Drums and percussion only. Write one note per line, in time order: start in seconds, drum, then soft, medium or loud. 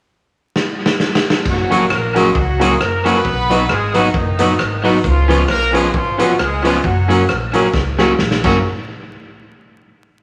0.56 snare medium
0.86 snare medium
1.00 snare medium
1.15 snare medium
1.30 snare medium
1.45 kick loud
1.45 crash medium
1.72 closed hi-hat medium
1.90 cross-stick loud
2.16 closed hi-hat medium
2.35 kick loud
2.61 closed hi-hat loud
2.81 cross-stick loud
3.06 closed hi-hat medium
3.25 kick medium
3.51 closed hi-hat medium
3.69 cross-stick loud
3.94 closed hi-hat medium
4.14 kick loud
4.39 closed hi-hat loud
4.59 cross-stick loud
4.85 open hi-hat medium
5.04 kick medium
5.04 hi-hat pedal medium
5.30 closed hi-hat medium
5.48 cross-stick loud
5.75 closed hi-hat medium
5.94 kick loud
6.19 closed hi-hat loud
6.39 cross-stick loud
6.65 closed hi-hat medium
6.84 kick medium
7.10 closed hi-hat medium
7.29 cross-stick medium
7.54 closed hi-hat medium
7.74 kick loud
7.74 snare medium
7.99 snare medium
8.19 snare medium
8.31 snare medium
8.44 kick medium
8.44 crash medium